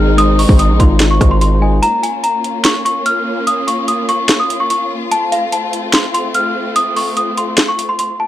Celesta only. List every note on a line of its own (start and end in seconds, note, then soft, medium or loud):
0.00 0.16 F6 medium
0.18 0.37 D#6 loud
0.39 0.58 C#6 medium
0.59 0.78 D#6 medium
0.80 1.09 C6 medium
1.11 1.30 C#6 medium
1.31 1.40 C6 medium
1.41 1.61 C6 medium
1.62 1.81 G#5 medium
1.82 2.02 A#5 loud
2.03 2.22 G#5 medium
2.24 2.62 A#5 medium
2.65 2.84 C#6 medium
2.85 3.04 C#6 medium
3.06 3.44 F6 medium
3.47 3.66 D#6 loud
3.67 3.87 C#6 medium
3.88 4.07 D#6 medium
4.09 4.38 C#6 medium
4.40 4.59 D#6 medium
4.60 4.69 C#6 medium
4.70 4.89 C#6 medium
5.11 5.30 A5 loud
5.32 5.51 F5 medium
5.52 5.91 A5 medium
5.94 6.13 C6 medium
6.14 6.33 C6 medium
6.35 6.73 F6 medium
6.76 6.95 D#6 loud
6.96 7.15 C#6 medium
7.17 7.36 D#6 medium
7.38 7.66 C6 medium
7.68 7.87 C#6 medium
7.89 7.98 C6 medium
7.99 8.18 C6 medium
8.20 8.27 A5 medium